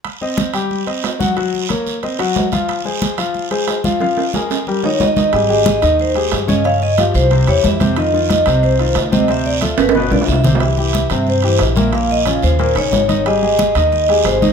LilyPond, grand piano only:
\new Staff \with { instrumentName = "Grand piano" } { \time 4/4 \key aes \major \tempo 4 = 182 r8 <c' c'' ees''>4 <g g' g''>4 <c' c'' ees''>4 <ges ges' ges''>8 | <ges ges' ges''>4 <bes bes' des''>4 <c' c'' ees''>8 <ges ges' ges''>4 <f f' f''>8~ | <f f' f''>8 <aes aes' c''>4 <f f' f''>4 <aes aes' c''>4 <f f' f''>8 | <f f' f''>4 <aes aes' bes'>4 <g g' bes'>8 <ees ees' ees''>4 <ees ees' ees''>8 |
<g g' aes'>8 <aes g' aes'>4 <ees ees' ees''>4 <aes g' aes'>4 <des des' des''>8 | <des des' des''>4 <f f' g'>4 <c c' c''>8 <e e' g'>4 <c c' c''>8 | <ees ees' f'>8 <ees ees' f'>4 <c c' c''>4 <ees ees' f'>4 <c c' c''>8 | <c c' c''>4 <f f' a'>4 <b, b b'>8 <d d' f'>4 <c c' c''>8 |
<e e' g'>8 <e e' g'>4 <c c' c''>4 <e e' g'>4 <bes, bes bes'>8 | <bes, bes bes'>4 <des des' f'>4 <bes, bes bes'>8 <des des' ees'>4 <ees ees' ees''>8 | <g g' aes'>8 <aes g' aes'>4 <ees ees' ees''>4 <aes g' aes'>4 <ees ees' ees''>8 | }